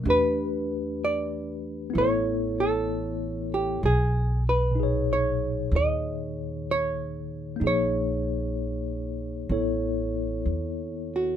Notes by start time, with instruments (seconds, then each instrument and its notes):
0.04 upright bass E2, tine electric piano A3 D4 G4
0.09 tine electric piano B4, hollow-body jazz guitar B4
1.05 hollow-body jazz guitar D5
1.90 tine electric piano B3 E4
1.95 upright bass A1, tine electric piano A4, hollow-body jazz guitar C#5
2.01 tine electric piano C#5
2.60 hollow-body jazz guitar A4
3.54 hollow-body jazz guitar G4
3.83 upright bass B1, hollow-body jazz guitar G#4
4.49 hollow-body jazz guitar B4
4.71 tine electric piano A#2
4.75 tine electric piano D#4
4.80 tine electric piano G#4 C#5
5.13 hollow-body jazz guitar C#5
5.71 upright bass D#2
5.76 hollow-body jazz guitar D#5
6.71 hollow-body jazz guitar C#5
7.56 tine electric piano A#3 D#4
7.61 upright bass A#1, tine electric piano G#4
7.67 hollow-body jazz guitar C#5, tine electric piano C#5
9.49 upright bass A1, tine electric piano B3 E4 A4 C#5
10.46 upright bass D#2
11.16 hollow-body jazz guitar F#4